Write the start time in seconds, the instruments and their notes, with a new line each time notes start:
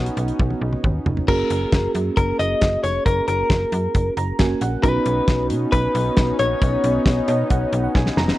Already playing: fm bass B1, fm electric piano B3 C#4 D#4 F#4, analog synth pad B3 C#4 D#4, clean electric guitar F#4
0.06 closed hi-hat
0.17 fm bass B1, closed hi-hat
0.28 closed hi-hat
0.39 fm bass B1, kick, high tom
0.50 high tom
0.61 fm bass B1
0.73 mid tom
0.84 fm bass D#2, kick, mid tom
1.06 fm bass F1, floor tom
1.17 floor tom
1.28 fm bass F#1, fm electric piano A#3 C#4 F#4 G#4, clean electric guitar A#4, kick, crash
1.50 fm bass F#1, closed hi-hat
1.72 fm bass F#1, kick, snare, closed hi-hat
1.95 fm bass F#2, closed hi-hat
2.17 fm bass F#1, clean electric guitar A#4, kick, closed hi-hat
2.39 fm bass F#1, clean electric guitar D#5, closed hi-hat
2.61 fm bass F#1, kick, snare, closed hi-hat
2.83 fm bass F1, clean electric guitar C#5, closed hi-hat
3.06 fm bass F#1, clean electric guitar A#4, kick, closed hi-hat
3.28 fm bass F#1, clean electric guitar A#4, closed hi-hat
3.50 fm bass F#1, kick, snare, closed hi-hat
3.72 fm bass F#2, closed hi-hat
3.95 fm bass F#1, kick, closed hi-hat
4.17 fm bass F#1, fm electric piano A#5, closed hi-hat
4.39 fm bass F#1, fm electric piano A#3 C#4 F#4 A#4 G#5, kick, snare, closed hi-hat
4.61 fm bass A#1, fm electric piano F#5, closed hi-hat
4.83 fm bass B1, analog synth pad B3 C#4 D#4, fm electric piano B3 C#4 D#4 F#4, clean electric guitar B4, kick, closed hi-hat
5.06 fm bass B1, closed hi-hat
5.28 fm bass B1, kick, snare, closed hi-hat
5.50 fm bass B2, closed hi-hat
5.72 fm bass B1, clean electric guitar B4, kick, closed hi-hat
5.95 fm bass B1, closed hi-hat
6.17 fm bass B1, kick, snare, closed hi-hat
6.39 fm bass A#1, clean electric guitar C#5, closed hi-hat
6.61 fm bass B1, kick, closed hi-hat
6.84 fm bass B1, closed hi-hat
7.06 fm bass B1, kick, snare, closed hi-hat
7.28 fm bass B2, fm electric piano D#5, closed hi-hat
7.50 fm bass B1, fm electric piano F#5, kick, closed hi-hat
7.72 fm bass B1, closed hi-hat
7.84 fm electric piano F#5
7.95 fm bass B1, fm electric piano G#5, kick, snare
8.06 snare
8.17 fm bass F1, fm electric piano A#5, snare
8.28 snare